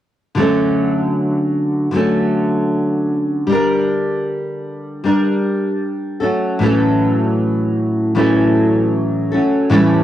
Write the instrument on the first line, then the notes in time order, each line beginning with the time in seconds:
nylon-string guitar
0.35 D3 F#3 A3
0.39 C#4 A4
1.91 D3 F#3 A3
1.95 C#4 A4
3.47 G3 D4
3.52 A#4
5.04 G3 D4 A#4
6.20 F#3 A3 C#4 A4
6.59 A2 E3 F#3 A3
6.63 C#4 A4
8.15 A2 E3 F#3 A3 C#4 A4
9.31 F#3 A3 C#4 A4
9.69 A2 E3 G3 A3 C#4 A4